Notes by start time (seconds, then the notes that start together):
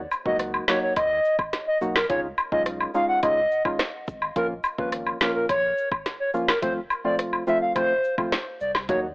0.11 cabasa, high woodblock
0.26 C#2 F#3 A#3 D#4 F#4 D#5, kick
0.39 cross-stick, closed hi-hat
0.54 high woodblock
0.68 F#3 A#3 D#4 F#4 C#5, snare, cabasa
0.83 C#5
0.96 D#2 D#5, kick, closed hi-hat, high woodblock
1.25 cabasa
1.39 kick, high woodblock
1.53 snare, closed hi-hat
1.67 D#5
1.81 B1 F#3 A#3 D#4 F#4, cabasa
1.95 A#4, snare, high woodblock
2.09 C#2 G#3 C#4 D#4 F4 C#5, kick, closed hi-hat
2.38 cabasa, high woodblock
2.52 B1 G#3 C#4 D#4 F4 D#5, kick
2.66 cross-stick, closed hi-hat
2.80 high woodblock
2.94 G#3 C#4 D#4 F4 F5, cabasa
3.09 F#5
3.23 C#2 G#3 C#4 D#4 F4 D#5, kick, closed hi-hat, high woodblock
3.51 cabasa
3.65 G#3 C#4 D#4 F4, kick, high woodblock
3.79 cross-stick, snare, closed hi-hat
4.07 G#1, kick, cabasa
4.22 high woodblock
4.36 A#1 F3 A#3 C#4 F4 A#4, kick, closed hi-hat
4.64 cabasa, high woodblock
4.78 G#1 F3 A#3 C#4 F4 B4, kick
4.92 cross-stick, closed hi-hat
5.07 high woodblock
5.21 F3 A#3 C#4 F4 A#4, snare, cabasa
5.35 A#4
5.49 A#1 C#5, kick, closed hi-hat, high woodblock
5.78 cabasa
5.92 kick, high woodblock
6.06 snare, closed hi-hat
6.20 C#5
6.34 F#1 F3 A#3 C#4 F4, cabasa
6.48 A#4, snare, high woodblock
6.62 F1 F3 A3 C4 F4 C5, kick, closed hi-hat
6.90 cabasa, high woodblock
7.04 E1 F3 A3 C4 F4 D5
7.19 cross-stick, closed hi-hat
7.33 high woodblock
7.47 F3 A3 C4 F4 E5, cabasa
7.62 F5
7.75 F1 F3 A3 C4 F4 C5, kick, closed hi-hat, high woodblock
8.04 cabasa
8.18 F3 A3 C4 F4, kick, high woodblock
8.32 snare, closed hi-hat
8.60 C2 D5, cabasa
8.75 snare, high woodblock
8.89 D#2 F#3 A#3 D#4 F#4 C#5, kick, closed hi-hat